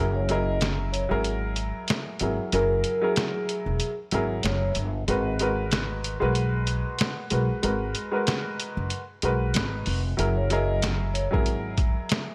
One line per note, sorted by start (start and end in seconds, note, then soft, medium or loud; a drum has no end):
0.00 1.07 F#1 loud
0.00 0.26 F#3 medium
0.00 0.27 E4 medium
0.00 0.27 G#4 medium
0.00 0.27 A#4 loud
0.15 0.28 C#5 medium
0.29 1.04 F#3 medium
0.29 1.04 E4 medium
0.29 1.04 G#4 medium
0.29 1.05 A#4 loud
0.29 0.58 D#5 medium
0.29 closed hi-hat medium
0.61 snare loud
0.61 snare medium
0.61 closed hi-hat medium
0.92 1.09 C#5 medium
0.92 closed hi-hat medium
1.09 1.71 G#1 medium
1.09 2.12 F#3 loud
1.09 2.12 E4 medium
1.09 2.13 G#4 medium
1.09 2.13 A#4 loud
1.24 closed hi-hat medium
1.56 closed hi-hat medium
1.88 snare loud
1.88 snare medium
1.88 closed hi-hat medium
2.19 2.37 G#1 medium
2.19 2.50 F#3 medium
2.19 2.51 E4 medium
2.19 2.51 G#4 medium
2.19 2.52 A#4 medium
2.19 closed hi-hat medium
2.52 2.82 F#1 loud
2.52 2.98 F#3 medium
2.52 2.99 E4 medium
2.52 2.99 G#4 medium
2.52 3.00 A#4 loud
2.52 2.99 A#4 medium
2.52 closed hi-hat medium
2.84 closed hi-hat medium
3.01 3.89 F#3 loud
3.01 3.90 E4 medium
3.01 3.94 G#4 medium
3.01 3.90 G#4 medium
3.01 3.90 A#4 loud
3.16 snare loud
3.16 snare medium
3.16 closed hi-hat medium
3.49 closed hi-hat medium
3.66 3.79 E1 medium
3.80 closed hi-hat medium
4.11 4.42 G#1 medium
4.11 4.87 F#3 medium
4.11 4.87 E4 medium
4.11 4.87 G#4 medium
4.11 4.88 A#4 loud
4.11 closed hi-hat medium
4.43 4.74 F#1 loud
4.43 4.73 C#5 medium
4.43 snare loud
4.43 snare medium
4.43 closed hi-hat medium
4.75 5.06 G1 loud
4.75 closed hi-hat medium
5.08 6.18 G#1 loud
5.08 5.38 G#3 medium
5.08 5.38 F#4 medium
5.08 5.38 A#4 medium
5.08 5.39 B4 loud
5.08 closed hi-hat medium
5.39 6.15 G#3 medium
5.39 6.15 F#4 medium
5.39 6.15 A#4 medium
5.39 6.16 B4 loud
5.39 closed hi-hat medium
5.72 snare loud
5.72 snare medium
5.72 closed hi-hat medium
6.04 closed hi-hat medium
6.20 6.82 B1 medium
6.20 7.23 G#3 loud
6.20 7.23 F#4 medium
6.20 7.24 A#4 medium
6.20 7.24 B4 loud
6.35 closed hi-hat medium
6.67 closed hi-hat medium
6.99 snare loud
6.99 snare medium
6.99 closed hi-hat medium
7.30 7.48 B1 loud
7.30 7.61 G#3 medium
7.30 7.61 F#4 medium
7.30 7.62 A#4 medium
7.30 7.62 B4 medium
7.30 closed hi-hat medium
7.63 7.93 G#1 loud
7.63 8.08 G#3 medium
7.63 8.09 F#4 medium
7.63 8.09 A#4 medium
7.63 8.10 B4 medium
7.63 closed hi-hat medium
7.95 closed hi-hat medium
8.11 9.00 G#3 medium
8.11 9.00 F#4 medium
8.11 9.00 A#4 medium
8.11 9.01 B4 loud
8.27 snare loud
8.27 closed hi-hat medium
8.60 closed hi-hat medium
8.77 8.90 F#1 medium
8.90 closed hi-hat medium
9.22 9.53 B1 medium
9.22 9.97 G#3 medium
9.22 9.98 F#4 medium
9.22 9.98 A#4 medium
9.22 9.99 B4 loud
9.22 closed hi-hat medium
9.54 9.84 G#1 medium
9.54 snare loud
9.54 snare medium
9.54 closed hi-hat medium
9.86 10.16 F1 medium
9.86 open hi-hat medium
10.17 11.28 F#1 loud
10.17 10.48 F#3 medium
10.17 10.48 E4 medium
10.17 10.48 G#4 medium
10.17 10.49 A#4 loud
10.17 closed hi-hat medium
10.36 10.49 C#5 medium
10.50 11.25 F#3 loud
10.50 11.25 E4 medium
10.50 11.26 G#4 medium
10.50 11.26 A#4 loud
10.50 closed hi-hat medium
10.82 snare loud
10.82 snare medium
10.82 closed hi-hat medium
11.14 11.30 C#5 medium
11.14 closed hi-hat medium
11.31 11.93 G#1 medium
11.31 12.34 F#3 medium
11.31 12.34 E4 medium
11.31 12.34 G#4 medium
11.31 12.35 A#4 loud
11.31 kick medium
11.46 closed hi-hat medium
11.78 kick medium
11.78 closed hi-hat medium
12.09 snare loud
12.09 snare medium
12.09 closed hi-hat medium